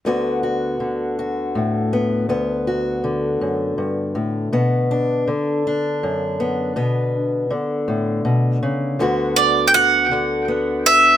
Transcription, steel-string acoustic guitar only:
\new Staff \with { instrumentName = "Steel-string acoustic guitar" } { \clef bass \time 6/8 \key d \major \tempo 4. = 54 << { <d b fis'>8 fis'4 fis'4 b8 | b8 fis'2~ fis'8 | b8 d'4 d'4 b8 | b2. |
<d b fis'>4 fis'4 b4 | } \\ { d,4 d4 a,4 | d,4 d8 fis,8 g,8 a,8 | b,4 d4 fis,4 | b,4 d8 a,8 b,8 cis8 |
d,4. d4. | } >> }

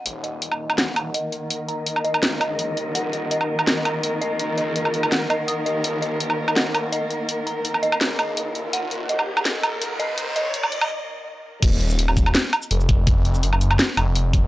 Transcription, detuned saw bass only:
\new Staff \with { instrumentName = "Detuned saw bass" } { \clef bass \time 4/4 \key ees \minor \tempo 4 = 166 ees,,2. r4 | r2 des,4. ees,,8 | ees,,2. f,,4~ | f,,8 des,4. r4. ees,8 |
ees,,2. r4 | r2 des,4. ees,,8 | ees,,2. des,4~ | des,4 ees,,4 r2 |
ees,,2 r4 f,,4~ | f,,4 ges,,4 r8 f,,4. | }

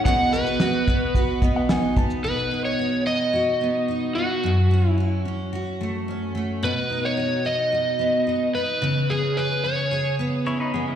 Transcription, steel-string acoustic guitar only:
\new Staff \with { instrumentName = "Steel-string acoustic guitar" } { \time 4/4 \key b \mixolydian \tempo 4 = 110 <b, fis'>8 b8 fis'8 b8 fis'8 b8 dis'8 b8 | b,8 dis'8 fis'8 dis'8 fis'8 b8 dis'8 b8 | fis,8 cis'8 fis'8 cis'8 fis'8 a8 cis'8 a8 | b,8 dis'8 fis'8 dis'8 fis'8 b8 dis'8 b8 |
cis8 cis'8 gis'8 cis'8 gis'8 b8 cis'8 b8 | }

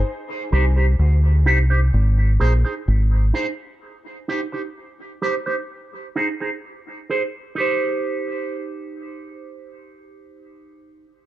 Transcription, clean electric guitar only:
\new Staff \with { instrumentName = "Clean electric guitar" } { \time 4/4 \key c \minor \tempo 4 = 64 r8 <ees' g' c''>16 <ees' g' c''>16 r8 <ees' g' c''>16 <ees' g' c''>16 r8 <ees' aes' c''>16 <ees' aes' c''>16 r8 <ees' aes' c''>16 r16 | r8 <ees' g' c''>16 <ees' g' c''>16 r8 <ees' g' c''>16 <ees' g' c''>16 r8 <ees' aes' c''>16 <ees' aes' c''>16 r8 <ees' aes' c''>16 r16 | <ees' g' c''>1 | }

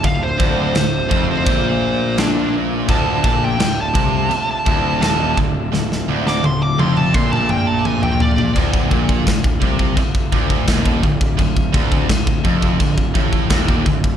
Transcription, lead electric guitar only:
\new Staff \with { instrumentName = "Lead electric guitar" } { \time 4/4 \key d \minor \tempo 4 = 85 f''16 c''4. c''4~ c''16 d'8 r8 | a''8 a''16 g''8 a''4 a''8. a''8 r8 | r8. d'''16 c'''16 d'''16 c'''16 a''16 c'''16 a''16 g''16 a''16 gis''16 g''16 d''8 | r1 |
r1 | }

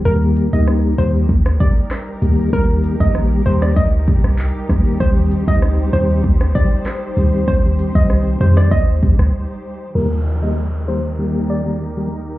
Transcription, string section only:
\new Staff \with { instrumentName = "String section" } { \time 4/4 \key ees \major \tempo 4 = 97 << { bes'1~ | bes'1 | c''1~ | c''1 |
bes'1 | } \\ { <g ees' g'>1~ | <g ees' g'>1~ | <g ees' g'>1~ | <g ees' g'>1 |
<ees ees' g'>1 | } >> }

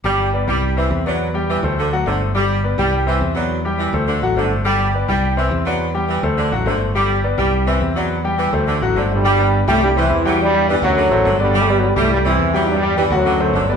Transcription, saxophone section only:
\new Staff \with { instrumentName = "Saxophone section" } { \clef bass \time 4/4 \key g \major \tempo 4 = 209 g4. g4 e4 fis8~ | fis4 e4 d4 d4 | g4. g4 e4 fis8~ | fis4 e4 d4 d4 |
g4. g4 e4 fis8~ | fis4 e4 d4 d4 | g4. g4 e4 fis8~ | fis4 e4 d4 d4 |
g4. g4 e4 fis8~ | fis4 e4 d4 d4 | g4. g4 e4 fis8~ | fis4 e4 d4 d4 | }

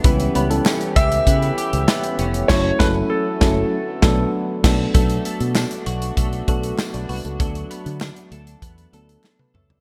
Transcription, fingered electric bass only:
\new Staff \with { instrumentName = "Fingered electric bass" } { \clef bass \time 4/4 \key b \minor \tempo 4 = 98 cis,8 cis,8 r8 cis,8 cis8 r16 cis,16 r8 eis,,8 | fis,,8 fis,,8 r8 fis,,8 r8 b,,8 r8 b,,8 | b,,8 r16 b,8 r16 b,,8 b,,8 b,,8 r16 b,,16 c,16 cis,16 | d,8 r16 d8 r16 d,8 e,8 d,8 r8 cis,8 | }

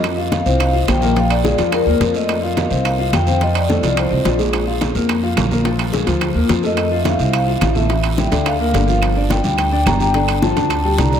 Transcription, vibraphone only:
\new Staff \with { instrumentName = "Vibraphone" } { \time 4/4 \key f \mixolydian \tempo 4 = 214 ees''8 r8 f''4 f''4 g''4 | f''8 d''4. bes'4. ees''8~ | ees''8 r8 f''4 f''4 g''4 | ees''8 d''4. c''4. r8 |
r1 | r2. r8 ees''8~ | ees''8. e''16 f''4 f''4 r8 e''8~ | e''4 g''4 f''4. f''8~ |
f''8 r8 g''4 g''4 bes''8 g''8~ | g''8 r8 a''4 a''4 bes''8 d''8 | }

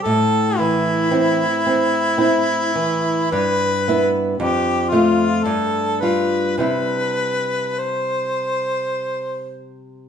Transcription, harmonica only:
\new Staff \with { instrumentName = "Harmonica" } { \time 3/4 \key c \major \tempo 4 = 54 a'8 e'2~ e'8 | b'8. r16 g'8 f'8 a'8 b'8 | b'4 c''4. r8 | }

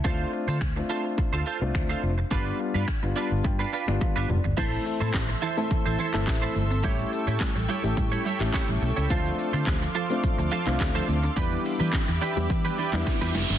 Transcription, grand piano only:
\new Staff \with { instrumentName = "Grand piano" } { \time 4/4 \key a \minor \tempo 4 = 106 << { r1 | r4. a''8 g''4 f''8 d''8 | r1 | r1 |
r1 | r1 | } \\ { <a c' d' f'>8. r8 <a c' d' f'>4 r8 <a c' d' f'>8. r8 | <g b d' f'>8. r8 <g b d' f'>4 r8 <g b d' f'>8. r8 | <a c' e' a'>4~ <a c' e' a'>16 r8 <a c' e' a'>8. r16 <a c' e' a'>8. r8 | <a cis' e' g'>4~ <a cis' e' g'>16 r8 <a cis' e' g'>8. r16 <a cis' e' g'>8. r8 |
<a c' d' f'>4~ <a c' d' f'>16 r8 <a c' d' f'>8. r16 <a c' d' f'>8. r8 | <g b d' e'>4~ <g b d' e'>16 r8 <g b d' g'>8. r16 <g b d' e'>8. r8 | } >> }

